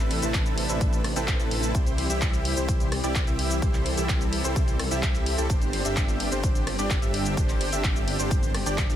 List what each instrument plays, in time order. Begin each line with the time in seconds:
Already playing: detuned saw bass A1, analog synth pad C3 A3 D4 B4, supersaw synth C4 E4 A4 B4 E5
0.11 open hi-hat, ride
0.22 detuned saw bass A1, supersaw synth C4 E4 A4 B4 A5, closed hi-hat, shaker
0.34 kick, clap, closed hi-hat, shaker
0.46 closed hi-hat, shaker
0.58 open hi-hat, ride
0.69 detuned saw bass A1, supersaw synth C4 E4 A4 B4 E5, shaker
0.81 kick, closed hi-hat, shaker
0.93 closed hi-hat, shaker
1.04 cross-stick, open hi-hat, ride
1.16 detuned saw bass A1, supersaw synth C4 E4 A4 B4 G5, closed hi-hat, shaker
1.28 kick, clap, closed hi-hat, shaker
1.40 detuned saw bass A1, supersaw synth C4 E4 A4 B4 A5, closed hi-hat, shaker
1.51 open hi-hat, ride
1.63 closed hi-hat, shaker
1.75 detuned saw bass C2, analog synth pad E3 G3 C4 G4, supersaw synth E4 G4 C5, kick, closed hi-hat, shaker
1.87 closed hi-hat, shaker
1.98 open hi-hat, ride
2.10 detuned saw bass C2, supersaw synth E4 G4 E5, closed hi-hat, shaker
2.21 kick, clap, closed hi-hat, shaker
2.33 closed hi-hat, shaker
2.45 open hi-hat, ride
2.57 detuned saw bass C2, supersaw synth E4 G4 C5, closed hi-hat, shaker
2.69 kick, closed hi-hat, shaker
2.80 closed hi-hat, shaker
2.92 cross-stick, open hi-hat, ride
3.04 detuned saw bass C2, supersaw synth E4 G4 D5, closed hi-hat, shaker
3.15 kick, clap, closed hi-hat, shaker
3.27 detuned saw bass C2, supersaw synth E4 G4 E5, closed hi-hat, shaker
3.39 open hi-hat, ride
3.51 closed hi-hat, shaker
3.62 detuned saw bass C2, supersaw synth E4 G4 C5, analog synth pad A4, kick, closed hi-hat, shaker
3.74 clap, closed hi-hat, shaker
3.86 open hi-hat, ride
3.97 detuned saw bass C2, supersaw synth E4 G4 E5, closed hi-hat, shaker
4.09 kick, clap, closed hi-hat, shaker
4.21 closed hi-hat, shaker
4.33 open hi-hat, ride
4.44 detuned saw bass C2, supersaw synth E4 G4 C5, closed hi-hat, shaker
4.56 kick, closed hi-hat, shaker
4.68 closed hi-hat, shaker
4.80 cross-stick, open hi-hat, ride
4.91 detuned saw bass C2, supersaw synth E4 G4 E5, closed hi-hat, shaker
5.03 kick, clap, closed hi-hat, shaker
5.15 closed hi-hat, shaker
5.26 open hi-hat, ride
5.38 detuned saw bass C2, supersaw synth E4 G4 A4, shaker
5.50 detuned saw bass G1, analog synth pad D3 G4, supersaw synth D4, kick, closed hi-hat, shaker
5.62 closed hi-hat, shaker
5.73 open hi-hat, ride
5.85 detuned saw bass G1, supersaw synth D4 G4 E5, closed hi-hat, shaker
5.97 kick, clap, closed hi-hat, shaker
6.08 closed hi-hat, shaker
6.20 open hi-hat, ride
6.32 detuned saw bass G1, supersaw synth D4 G4 C5, closed hi-hat, shaker
6.44 kick, closed hi-hat, shaker
6.55 closed hi-hat, shaker
6.67 cross-stick, open hi-hat, ride
6.79 detuned saw bass G1, supersaw synth D4 G4 D5, closed hi-hat, shaker
6.90 kick, clap, closed hi-hat, shaker
7.02 detuned saw bass G1, supersaw synth D4 G4 E5, closed hi-hat, shaker
7.14 open hi-hat, ride
7.26 closed hi-hat, shaker
7.37 detuned saw bass G1, supersaw synth D4 G4 C5, kick, closed hi-hat, shaker
7.49 clap, closed hi-hat, shaker
7.61 open hi-hat, ride
7.72 detuned saw bass G1, supersaw synth D4 G4 E5, shaker
7.84 kick, clap, closed hi-hat, shaker
7.96 closed hi-hat, shaker
8.08 open hi-hat, ride
8.19 detuned saw bass G1, supersaw synth D4 G4 C5, shaker
8.31 kick, closed hi-hat, shaker
8.43 closed hi-hat, shaker
8.55 cross-stick, open hi-hat, ride
8.66 detuned saw bass G1, supersaw synth D4 G4 D5, closed hi-hat, shaker
8.78 kick, clap, closed hi-hat, shaker
8.90 detuned saw bass G1, supersaw synth D4 G4 E5, closed hi-hat, shaker